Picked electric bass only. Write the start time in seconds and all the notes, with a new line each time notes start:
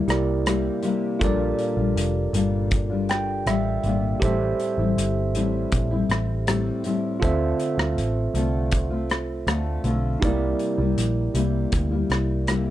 0.08 C2
1.21 A#1
1.77 A#1
1.96 F1
2.33 G1
3.46 A1
3.84 G#1
4.22 A1
4.78 A1
4.97 G1
5.34 A1
5.72 A#1
6.09 A1
7.22 D2
7.78 D2
7.96 A1
8.34 C2
9.47 D2
9.84 B1
10.22 C2
10.78 C2
10.97 A#1
11.34 C2
11.73 D2
12.10 C2